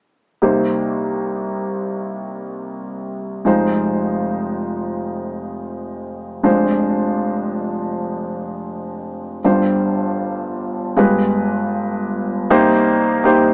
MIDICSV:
0, 0, Header, 1, 2, 480
1, 0, Start_track
1, 0, Key_signature, -3, "minor"
1, 0, Tempo, 759494
1, 266, Time_signature, 4, 2, 24, 8
1, 2185, Tempo, 749064
1, 6505, Tempo, 762389
1, 8607, End_track
2, 0, Start_track
2, 0, Title_t, "Grand piano"
2, 0, Program_c, 0, 0
2, 264, Note_on_c, 0, 58, 43
2, 267, Note_on_c, 0, 67, 39
2, 268, Note_on_c, 0, 36, 42
2, 269, Note_on_c, 0, 48, 41
2, 270, Note_on_c, 0, 63, 38
2, 274, Note_on_c, 0, 72, 49
2, 392, Control_c, 0, 64, 127
2, 2159, Note_off_c, 0, 58, 0
2, 2160, Note_off_c, 0, 67, 0
2, 2161, Note_off_c, 0, 36, 0
2, 2161, Note_off_c, 0, 48, 0
2, 2162, Note_off_c, 0, 63, 0
2, 2164, Note_off_c, 0, 72, 0
2, 2179, Note_on_c, 0, 56, 45
2, 2184, Note_on_c, 0, 29, 45
2, 2185, Note_on_c, 0, 63, 43
2, 2185, Note_on_c, 0, 65, 44
2, 2187, Note_on_c, 0, 41, 46
2, 2192, Note_on_c, 0, 72, 50
2, 2193, Control_c, 0, 64, 0
2, 2306, Control_c, 0, 64, 127
2, 4071, Note_off_c, 0, 56, 0
2, 4074, Note_off_c, 0, 29, 0
2, 4074, Note_off_c, 0, 63, 0
2, 4074, Note_off_c, 0, 65, 0
2, 4075, Note_off_c, 0, 41, 0
2, 4078, Note_off_c, 0, 72, 0
2, 4092, Note_on_c, 0, 56, 48
2, 4095, Note_on_c, 0, 62, 46
2, 4098, Note_on_c, 0, 65, 46
2, 4099, Note_on_c, 0, 29, 47
2, 4100, Note_on_c, 0, 41, 45
2, 4105, Note_on_c, 0, 72, 54
2, 4110, Control_c, 0, 64, 0
2, 4230, Control_c, 0, 64, 127
2, 5990, Note_off_c, 0, 56, 0
2, 5992, Note_off_c, 0, 62, 0
2, 5993, Note_off_c, 0, 65, 0
2, 5994, Note_off_c, 0, 29, 0
2, 5994, Note_off_c, 0, 41, 0
2, 5997, Note_off_c, 0, 72, 0
2, 6021, Note_on_c, 0, 55, 45
2, 6025, Note_on_c, 0, 31, 44
2, 6025, Note_on_c, 0, 43, 43
2, 6026, Note_on_c, 0, 62, 43
2, 6028, Control_c, 0, 64, 0
2, 6028, Note_on_c, 0, 72, 48
2, 6031, Note_on_c, 0, 65, 40
2, 6122, Control_c, 0, 64, 127
2, 6957, Note_off_c, 0, 31, 0
2, 6957, Note_off_c, 0, 43, 0
2, 6962, Note_off_c, 0, 55, 0
2, 6964, Note_off_c, 0, 62, 0
2, 6965, Note_off_c, 0, 72, 0
2, 6966, Note_off_c, 0, 65, 0
2, 6988, Note_on_c, 0, 56, 48
2, 6989, Control_c, 0, 64, 0
2, 6991, Note_on_c, 0, 65, 41
2, 6993, Note_on_c, 0, 67, 42
2, 6994, Note_on_c, 0, 43, 46
2, 6997, Note_on_c, 0, 31, 45
2, 7000, Note_on_c, 0, 71, 51
2, 7110, Control_c, 0, 64, 127
2, 7929, Note_off_c, 0, 43, 0
2, 7930, Note_off_c, 0, 31, 0
2, 7932, Note_off_c, 0, 56, 0
2, 7933, Note_off_c, 0, 65, 0
2, 7934, Note_off_c, 0, 67, 0
2, 7938, Note_off_c, 0, 71, 0
2, 7956, Control_c, 0, 64, 0
2, 7956, Note_on_c, 0, 63, 67
2, 7957, Note_on_c, 0, 36, 51
2, 7957, Note_on_c, 0, 58, 75
2, 7958, Note_on_c, 0, 48, 50
2, 7959, Note_on_c, 0, 67, 65
2, 7961, Note_on_c, 0, 72, 84
2, 8069, Control_c, 0, 64, 127
2, 8393, Note_off_c, 0, 58, 0
2, 8393, Note_off_c, 0, 63, 0
2, 8394, Note_off_c, 0, 67, 0
2, 8395, Note_off_c, 0, 72, 0
2, 8419, Note_on_c, 0, 58, 59
2, 8421, Note_on_c, 0, 63, 51
2, 8427, Note_on_c, 0, 67, 57
2, 8428, Note_on_c, 0, 72, 65
2, 8607, Note_off_c, 0, 36, 0
2, 8607, Note_off_c, 0, 48, 0
2, 8607, Note_off_c, 0, 58, 0
2, 8607, Note_off_c, 0, 63, 0
2, 8607, Note_off_c, 0, 67, 0
2, 8607, Note_off_c, 0, 72, 0
2, 8607, End_track
0, 0, End_of_file